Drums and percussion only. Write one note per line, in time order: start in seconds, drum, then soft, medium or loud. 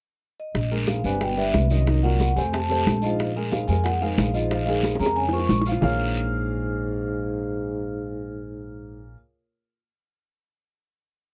0.55 high bongo medium
0.55 high conga soft
0.55 long guiro medium
0.72 high conga soft
0.88 high bongo medium
0.88 high conga medium
0.88 short guiro medium
1.04 high conga soft
1.04 short guiro medium
1.21 high bongo medium
1.21 high conga soft
1.21 long guiro medium
1.38 high conga soft
1.54 high bongo medium
1.54 low bongo medium
1.54 high conga medium
1.54 short guiro medium
1.70 high conga soft
1.70 short guiro medium
1.86 high bongo medium
1.86 high conga soft
1.86 long guiro medium
2.04 high bongo soft
2.04 high conga soft
2.20 high bongo medium
2.20 high conga medium
2.20 short guiro medium
2.36 high bongo soft
2.36 short guiro medium
2.53 high bongo medium
2.53 high conga soft
2.53 long guiro medium
2.70 high bongo soft
2.70 high conga soft
2.86 high bongo medium
2.86 low bongo medium
2.86 high conga medium
2.86 short guiro medium
3.02 short guiro medium
3.19 high bongo medium
3.19 high conga soft
3.19 long guiro medium
3.36 high conga soft
3.52 high bongo medium
3.52 high conga medium
3.52 short guiro medium
3.68 high conga soft
3.68 short guiro medium
3.85 high bongo medium
3.85 high conga soft
3.85 long guiro medium
4.01 high conga soft
4.18 high bongo medium
4.18 low bongo medium
4.18 high conga medium
4.18 short guiro medium
4.34 high conga soft
4.34 short guiro medium
4.51 high bongo medium
4.51 high conga soft
4.51 long guiro medium
4.67 high bongo soft
4.67 high conga soft
4.83 high bongo medium
4.83 high conga medium
4.83 short guiro medium
4.95 high bongo medium
5.00 short guiro medium
5.06 high bongo medium
5.16 high conga soft
5.16 long guiro medium
5.28 low bongo medium
5.33 high conga soft
5.39 low bongo medium
5.49 low bongo medium
5.49 high conga medium
5.49 short guiro medium
5.61 low bongo medium
5.66 short guiro medium
5.72 low bongo medium
5.82 low bongo medium
5.82 low conga medium
5.82 long guiro medium